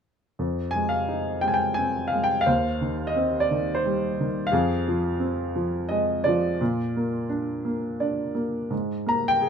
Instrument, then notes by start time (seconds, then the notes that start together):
grand piano
0.39 F2
0.71 G#5
0.76 G#3
0.89 F5
1.08 D#4
1.41 G#3 G5
1.48 G#5
1.54 G5
1.74 C4 G#5
2.08 F5
2.12 G#3
2.24 G5
2.41 F5
2.46 D#2 C5
2.81 D#3
3.07 D#5
3.16 C4
3.40 D5
3.51 D#3
3.75 C5
3.86 G3
4.20 D#3
4.47 F5
4.52 F2 G#4
4.88 F3
5.20 C4
5.56 F3
5.89 G#3 D#5
6.24 F3 F4 D5
6.61 A#2
6.97 A#3
7.29 D4
7.65 A#3
8.00 D4 D5
8.35 A#3
8.70 G#2
9.06 A#3 A#5
9.28 G5
9.41 G#4